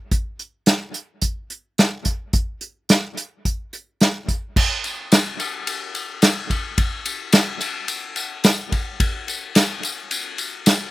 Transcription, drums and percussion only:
0.11 kick, closed hi-hat
0.39 closed hi-hat
0.66 snare, closed hi-hat
0.94 closed hi-hat
1.21 kick, closed hi-hat
1.50 closed hi-hat
1.78 snare, closed hi-hat
2.05 kick, closed hi-hat
2.33 kick, closed hi-hat
2.61 closed hi-hat
2.89 snare, closed hi-hat
3.17 closed hi-hat
3.45 kick, closed hi-hat
3.73 closed hi-hat
4.01 snare, closed hi-hat
4.28 kick, closed hi-hat
4.56 kick, crash, tambourine
4.84 ride, tambourine
5.12 snare, ride, tambourine
5.40 ride, tambourine
5.67 ride, tambourine
5.95 ride, tambourine
6.22 snare, ride, tambourine
6.50 kick, ride, tambourine
6.78 kick, ride, tambourine
7.05 ride, tambourine
7.32 snare, ride, tambourine
7.61 ride, tambourine
7.88 ride, tambourine
8.16 ride, tambourine
8.44 snare, ride, tambourine
8.72 kick, ride, tambourine
9.00 kick, ride, tambourine
9.28 ride, tambourine
9.55 snare, ride, tambourine
9.83 ride, tambourine
10.11 ride, tambourine
10.38 ride, tambourine
10.66 snare, ride, tambourine

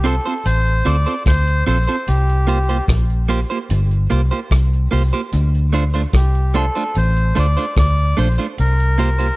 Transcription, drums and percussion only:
0.05 closed hi-hat
0.25 closed hi-hat
0.45 closed hi-hat
0.66 closed hi-hat
0.86 closed hi-hat
1.07 closed hi-hat
1.26 kick, cross-stick, closed hi-hat
1.47 closed hi-hat
1.67 open hi-hat
1.88 closed hi-hat
2.08 closed hi-hat
2.29 closed hi-hat
2.49 closed hi-hat
2.69 closed hi-hat
2.88 kick, cross-stick, closed hi-hat
3.10 closed hi-hat
3.29 open hi-hat
3.50 closed hi-hat
3.70 closed hi-hat
3.91 closed hi-hat
4.11 closed hi-hat
4.32 closed hi-hat
4.51 kick, cross-stick, closed hi-hat
4.73 closed hi-hat
4.92 open hi-hat
5.13 closed hi-hat
5.32 closed hi-hat
5.54 closed hi-hat
5.74 closed hi-hat
5.94 closed hi-hat
6.13 kick, cross-stick, closed hi-hat
6.35 closed hi-hat
6.54 closed hi-hat
6.75 closed hi-hat
6.95 closed hi-hat
7.16 closed hi-hat
7.36 closed hi-hat
7.57 closed hi-hat
7.77 kick, cross-stick, closed hi-hat
7.98 closed hi-hat
8.18 open hi-hat
8.39 closed hi-hat
8.58 closed hi-hat
8.80 closed hi-hat
8.99 closed hi-hat
9.20 closed hi-hat

